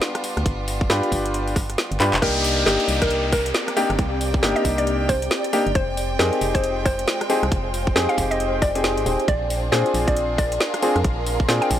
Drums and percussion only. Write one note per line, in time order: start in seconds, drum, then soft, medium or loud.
0.02 snare loud
0.15 cross-stick medium
0.15 closed hi-hat medium
0.24 open hi-hat loud
0.37 cross-stick medium
0.37 closed hi-hat soft
0.46 kick loud
0.46 closed hi-hat medium
0.68 open hi-hat loud
0.81 kick loud
0.90 snare loud
1.03 closed hi-hat soft
1.12 kick medium
1.12 open hi-hat loud
1.26 closed hi-hat medium
1.34 closed hi-hat medium
1.48 open hi-hat medium
1.56 kick loud
1.56 cross-stick medium
1.56 open hi-hat loud
1.70 cross-stick soft
1.70 closed hi-hat medium
1.78 snare loud
1.92 closed hi-hat medium
2.00 clap medium
2.00 open hi-hat loud
2.14 clap loud
2.14 closed hi-hat soft
2.22 kick loud
2.22 closed hi-hat medium
2.22 crash loud
2.44 open hi-hat loud
2.66 snare loud
2.80 closed hi-hat soft
2.88 open hi-hat loud
3.02 kick loud
3.02 closed hi-hat medium
3.11 closed hi-hat medium
3.32 kick loud
3.32 cross-stick medium
3.32 open hi-hat loud
3.46 closed hi-hat medium
3.54 snare loud
3.68 cross-stick medium
3.68 closed hi-hat medium
3.77 open hi-hat loud
3.90 cross-stick medium
3.90 closed hi-hat soft
3.99 kick loud
3.99 closed hi-hat medium
4.21 open hi-hat loud
4.34 kick loud
4.43 snare loud
4.56 closed hi-hat soft
4.65 kick medium
4.65 open hi-hat loud
4.78 closed hi-hat medium
4.87 closed hi-hat medium
5.09 kick loud
5.09 cross-stick medium
5.09 open hi-hat loud
5.22 closed hi-hat medium
5.31 snare loud
5.44 closed hi-hat medium
5.53 open hi-hat loud
5.67 closed hi-hat soft
5.75 kick loud
5.75 closed hi-hat medium
5.97 open hi-hat loud
6.19 snare loud
6.33 closed hi-hat soft
6.41 open hi-hat loud
6.55 kick loud
6.55 closed hi-hat medium
6.64 closed hi-hat medium
6.86 kick loud
6.86 cross-stick medium
6.86 open hi-hat loud
6.99 closed hi-hat medium
7.08 snare loud
7.21 cross-stick medium
7.21 closed hi-hat medium
7.30 open hi-hat loud
7.43 cross-stick medium
7.43 closed hi-hat soft
7.52 kick loud
7.52 closed hi-hat medium
7.74 open hi-hat loud
7.87 kick loud
7.96 snare loud
8.09 closed hi-hat soft
8.18 kick medium
8.18 open hi-hat loud
8.31 closed hi-hat medium
8.40 closed hi-hat medium
8.62 kick loud
8.62 cross-stick medium
8.62 open hi-hat loud
8.75 closed hi-hat medium
8.84 snare loud
8.97 closed hi-hat medium
9.06 open hi-hat loud
9.20 closed hi-hat soft
9.28 kick loud
9.28 closed hi-hat medium
9.50 open hi-hat loud
9.72 snare loud
9.86 closed hi-hat soft
9.94 open hi-hat loud
10.08 kick loud
10.08 closed hi-hat medium
10.16 closed hi-hat medium
10.38 kick loud
10.38 cross-stick soft
10.38 open hi-hat loud
10.52 closed hi-hat medium
10.60 snare loud
10.74 cross-stick medium
10.74 closed hi-hat medium
10.82 open hi-hat loud
10.96 cross-stick medium
10.96 closed hi-hat soft
11.04 kick loud
11.04 closed hi-hat medium
11.26 open hi-hat loud
11.40 kick loud
11.49 snare loud
11.62 closed hi-hat soft
11.71 kick medium
11.71 open hi-hat loud